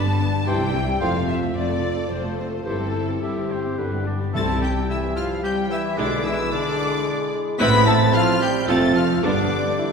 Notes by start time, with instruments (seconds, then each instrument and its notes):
Already playing: double bass section G1, cello section G2, french horn section G3 D4, violin section A5, flute section A5
0.06 viola section G3 B3
0.20 viola section B3 D4
0.33 viola section G3 B3
0.46 double bass section C2, cello section C3, viola section E3 E4, bassoon E3, french horn section G3 E4, clarinet G4, oboe C5, violin section G5, flute section G5
0.60 viola section G3 G4
0.73 viola section E3 E4
0.86 viola section G3 G4
1.00 double bass section F1, cello section F2, bassoon F3, french horn section A3 F4, viola section C4 F4, clarinet A4, oboe C5, violin section F5, flute section F5
1.14 viola section A3 A4
1.28 viola section C4 F4, violin section E5, flute section E5
1.41 viola section A3 A4
1.54 double bass section F1, cello section F2, viola section C4 F4, violin section D5, flute section D5
1.68 viola section A3 A4
1.82 viola section C4 F4
1.96 viola section A3 A4
2.09 double bass section F1, cello section F2, french horn section A3 F4, viola section C4 F4, violin section C5, flute section C5
2.24 viola section A3 A4
2.38 viola section C4 F4, flute section C5, violin section C5
2.51 viola section A3 A4
2.65 double bass section G1, cello section G2, bassoon E3, viola section G3 E4, french horn section C4 E4, clarinet G4, violin section A4, flute section A4, oboe C5
2.79 viola section C4 G4
2.93 viola section G3 E4
3.08 viola section C4 G4
3.21 double bass section G1, cello section G2, viola section G3 E4, french horn section C4 E4, flute section G4, violin section G4, oboe E5
3.36 viola section C4 G4
3.50 viola section G3 E4, oboe C5
3.64 viola section C4 G4
3.78 double bass section G1, cello section G2, bassoon D3, viola section G3 D4, french horn section B3 D4, clarinet G4, oboe B4
3.92 viola section B3 G4
4.06 viola section G3 D4, oboe D5
4.20 viola section B3 G4
4.33 double bass section C2, cello section C3, timpani C3, bassoon G3, french horn section A3, viola section C4 E4, clarinet E4, oboe A4, flute section A5, violin section A5 A6
4.61 french horn section G3, oboe G4, flute section G5, violin section G5 G6
4.88 french horn section E3, oboe E4, flute section E5, violin section E5 E6
5.15 french horn section F3, oboe F4, flute section F5, violin section F5 F6
5.43 french horn section G3, oboe G4, flute section G5, violin section G5 G6
5.70 french horn section E3, oboe E4, flute section E5, violin section E5 E6
5.98 double bass section B1, cello section B2, french horn section D3, bassoon G#3, viola section G#3 E4, oboe D4, violin section D5 D6, flute section D5
6.25 french horn section E3, oboe E4, flute section E5, violin section E5 E6
6.52 french horn section D3, oboe D4, violin section D5 D6, flute section D5
7.58 double bass section A1, cello section A2, french horn section B3, viola section C4 E4, bassoon C4, clarinet E4, oboe B4, flute section B5, violin section B5 B6
7.86 french horn section A3, oboe A4, violin section A5 A6, flute section A5
8.14 french horn section F3, oboe F4, violin section F5 F6, flute section F5
8.40 french horn section G3, oboe G4, violin section G5 G6, flute section G5
8.66 double bass section F1, cello section F2, french horn section A3, bassoon C4, viola section C4 F4, clarinet F4, oboe A4, violin section A5 A6, flute section A5
8.95 french horn section F3, oboe F4, flute section F5, violin section F5 F6
9.22 double bass section G1, cello section G2, french horn section D3, bassoon B3, viola section B3 D4, oboe D4, clarinet G4, violin section D5 D6, flute section D5
9.79 bassoon E4